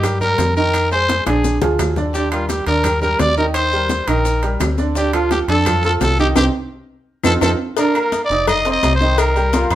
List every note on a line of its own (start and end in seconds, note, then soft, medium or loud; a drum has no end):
0.00 0.35 G2 loud
0.00 0.18 G3 medium
0.00 0.19 G4 medium
0.00 0.18 G4 medium
0.00 0.18 A#4 medium
0.00 high bongo medium
0.00 high conga soft
0.00 low conga medium
0.00 high timbale medium
0.00 claves medium
0.04 maracas medium
0.21 0.50 G3 medium
0.21 0.50 G4 medium
0.21 0.54 A#4 loud
0.21 0.50 A#4 medium
0.21 high conga soft
0.21 low conga medium
0.21 maracas soft
0.38 1.21 F2 medium
0.38 high bongo medium
0.38 low bongo medium
0.38 high conga medium
0.38 high timbale medium
0.38 low timbale medium
0.38 maracas medium
0.56 0.85 D#3 medium
0.56 0.86 D#4 medium
0.56 0.89 A#4 loud
0.56 0.86 D#5 medium
0.56 maracas soft
0.74 high bongo medium
0.74 high conga soft
0.74 high timbale medium
0.74 claves medium
0.74 maracas medium
0.91 1.21 G#3 medium
0.91 1.21 G#4 medium
0.91 1.24 C5 loud
0.91 1.21 C5 medium
0.91 high bongo soft
0.91 high conga soft
0.91 maracas soft
1.09 high bongo medium
1.09 high conga loud
1.09 high timbale medium
1.09 low timbale medium
1.09 maracas medium
1.26 1.59 A#1 medium
1.26 1.56 D3 medium
1.26 1.56 D4 medium
1.26 1.60 G#4 medium
1.26 1.56 D5 medium
1.26 high bongo medium
1.26 high conga medium
1.26 high timbale medium
1.26 claves medium
1.26 maracas soft
1.44 low bongo medium
1.44 high conga medium
1.44 maracas medium
1.62 1.78 D2 medium
1.62 1.91 F3 medium
1.62 1.91 F4 medium
1.62 1.91 G#4 medium
1.62 low bongo loud
1.62 low conga medium
1.62 high timbale medium
1.62 maracas soft
1.79 2.61 D#2 medium
1.79 low bongo medium
1.79 high timbale medium
1.79 low timbale medium
1.79 claves medium
1.79 maracas medium
1.96 2.12 D3 medium
1.96 2.12 D4 medium
1.96 2.12 D5 medium
1.96 low bongo medium
1.96 low conga medium
1.96 maracas soft
2.14 2.29 D3 medium
2.14 2.30 D4 medium
2.14 2.30 G4 medium
2.14 2.30 D5 medium
2.14 high bongo medium
2.14 high conga soft
2.14 maracas medium
2.31 2.61 G3 medium
2.31 2.48 F4 medium
2.31 2.62 G4 medium
2.31 2.62 A#4 medium
2.31 high conga soft
2.31 high timbale medium
2.31 claves medium
2.31 maracas soft
2.48 2.65 G4 medium
2.48 high bongo medium
2.48 high conga medium
2.48 high timbale medium
2.48 low timbale medium
2.48 maracas medium
2.67 3.16 D#2 medium
2.67 2.82 D3 medium
2.67 2.82 D4 medium
2.67 3.00 A#4 medium
2.67 2.82 D5 medium
2.67 high conga soft
2.67 high timbale medium
2.67 maracas soft
2.84 3.00 G3 medium
2.84 3.00 G4 medium
2.84 3.00 A#4 medium
2.84 high bongo medium
2.84 high conga soft
2.84 low conga medium
2.84 high timbale medium
2.84 claves medium
2.84 maracas medium
3.02 3.31 G3 medium
3.02 3.32 G4 medium
3.02 3.21 A#4 loud
3.02 3.32 A#4 medium
3.02 high conga soft
3.02 low conga medium
3.02 maracas soft
3.19 4.02 D#2 medium
3.19 3.37 D5 loud
3.19 high bongo medium
3.19 low bongo medium
3.19 high conga medium
3.19 high timbale medium
3.19 low timbale medium
3.19 maracas medium
3.37 3.66 D#3 medium
3.37 3.67 D#4 medium
3.37 3.45 A#4 medium
3.37 3.67 D#5 medium
3.37 maracas soft
3.54 4.09 C5 loud
3.54 high bongo medium
3.54 high conga soft
3.54 high timbale medium
3.54 claves medium
3.54 maracas medium
3.72 4.02 G3 medium
3.72 4.02 G4 medium
3.72 4.02 A#4 medium
3.72 high bongo soft
3.72 high conga soft
3.72 maracas soft
3.89 high bongo medium
3.89 high conga loud
3.89 high timbale medium
3.89 low timbale medium
3.89 maracas medium
4.07 4.57 A#1 medium
4.07 4.37 D#3 medium
4.07 4.37 D#4 medium
4.07 4.43 A#4 medium
4.07 4.37 D#5 medium
4.07 high conga soft
4.07 high timbale medium
4.07 claves medium
4.07 maracas soft
4.24 high bongo medium
4.24 high conga soft
4.24 maracas medium
4.42 4.72 G3 medium
4.42 4.72 G4 medium
4.42 4.72 A#4 medium
4.42 high bongo soft
4.42 high conga soft
4.42 high timbale medium
4.42 maracas soft
4.60 5.43 D2 medium
4.60 high bongo medium
4.60 low bongo medium
4.60 high conga medium
4.60 high timbale loud
4.60 low timbale medium
4.60 claves medium
4.60 maracas medium
4.78 4.93 D3 medium
4.78 4.93 D4 medium
4.78 4.93 D5 medium
4.78 high bongo soft
4.78 high conga medium
4.78 maracas soft
4.95 5.10 D3 medium
4.95 5.10 D4 medium
4.95 5.13 G4 medium
4.95 5.11 D5 medium
4.95 high bongo medium
4.95 high conga soft
4.95 maracas medium
5.13 5.42 F3 medium
5.13 5.42 F4 medium
5.13 5.30 F4 medium
5.13 5.43 A4 medium
5.13 high conga soft
5.13 high timbale medium
5.13 claves medium
5.13 maracas soft
5.31 5.39 G4 medium
5.31 high bongo medium
5.31 high conga medium
5.31 high timbale medium
5.31 low timbale medium
5.31 maracas medium
5.48 5.97 F2 loud
5.48 5.63 D3 medium
5.48 5.63 D4 medium
5.48 5.82 A4 loud
5.48 5.64 D5 medium
5.48 high conga soft
5.48 high timbale medium
5.48 maracas soft
5.66 5.81 F3 medium
5.66 5.81 F4 medium
5.66 5.81 A4 medium
5.66 high bongo medium
5.66 high conga soft
5.66 low conga medium
5.66 high timbale medium
5.66 claves medium
5.66 maracas medium
5.84 6.13 F3 medium
5.84 6.13 F4 medium
5.84 6.13 A4 medium
5.84 5.93 A4 medium
5.84 high conga soft
5.84 maracas soft
6.01 6.34 C2 medium
6.01 6.18 A4 medium
6.01 high bongo medium
6.01 low bongo medium
6.01 high conga medium
6.01 high timbale medium
6.01 low timbale medium
6.01 maracas medium
6.19 6.34 D#3 medium
6.19 6.34 D#4 medium
6.19 6.28 G4 loud
6.19 6.34 D#5 medium
6.19 high conga medium
6.19 maracas soft
6.36 6.50 C2 loud
6.36 6.48 C4 loud
6.36 6.48 D#4 loud
6.36 6.45 G4 loud
6.36 6.48 G4 loud
6.36 high bongo loud
6.36 high conga loud
6.36 high timbale loud
6.36 claves medium
6.36 maracas loud
7.23 7.38 F2 loud
7.23 7.36 C4 loud
7.23 7.36 D#4 loud
7.23 7.36 F4 medium
7.23 7.33 A4 loud
7.23 high bongo loud
7.23 high conga loud
7.23 high timbale medium
7.23 claves loud
7.23 maracas medium
7.41 7.55 F2 loud
7.41 7.53 C4 medium
7.41 7.53 D#4 medium
7.41 7.53 F4 medium
7.41 7.51 A4 medium
7.41 high bongo loud
7.41 high conga loud
7.41 high timbale loud
7.41 claves medium
7.41 maracas loud
7.77 7.92 D3 medium
7.77 7.92 D4 medium
7.77 8.00 A#4 medium
7.77 7.92 D5 medium
7.77 cowbell loud
7.77 high conga soft
7.77 low agogo medium
7.77 maracas medium
7.95 8.24 A#3 medium
7.95 8.24 A#4 medium
7.95 8.25 A#5 medium
7.95 high conga soft
7.95 low agogo loud
7.95 claves medium
7.95 maracas soft
8.01 8.23 A#4 medium
8.12 cowbell medium
8.12 high conga medium
8.12 low timbale medium
8.12 maracas medium
8.25 8.46 D5 loud
8.30 8.79 F1 loud
8.30 8.60 D#4 medium
8.30 8.60 D#5 medium
8.30 8.60 D#6 medium
8.30 high conga soft
8.30 maracas soft
8.47 8.70 D#5 loud
8.47 cowbell loud
8.47 high conga soft
8.47 low conga medium
8.47 low agogo loud
8.47 claves medium
8.47 maracas medium
8.65 8.95 C4 medium
8.65 8.95 C5 medium
8.65 8.95 C6 medium
8.65 cowbell medium
8.65 high conga soft
8.65 maracas soft
8.71 8.93 D#5 loud
8.83 9.65 C2 loud
8.83 cowbell medium
8.83 high conga medium
8.83 low timbale medium
8.83 low agogo medium
8.83 maracas medium
8.95 9.20 C5 loud
9.01 9.30 D#3 medium
9.01 9.30 D#4 medium
9.01 9.30 D#5 medium
9.01 high conga medium
9.01 maracas soft
9.18 9.71 A#4 medium
9.18 cowbell loud
9.18 high conga soft
9.18 low agogo loud
9.18 claves medium
9.18 maracas medium
9.36 9.65 G3 medium
9.36 9.65 G4 medium
9.36 9.65 G5 medium
9.36 high conga soft
9.36 low agogo medium
9.36 maracas soft
9.53 9.75 F4 loud
9.53 cowbell medium
9.53 high conga loud
9.53 low timbale medium
9.53 low agogo medium
9.53 maracas medium
9.70 9.75 F2 loud
9.70 9.75 C4 medium
9.70 9.75 C5 medium
9.70 9.75 C6 medium
9.70 cowbell medium
9.70 high conga soft
9.70 low agogo loud
9.70 claves medium
9.70 maracas soft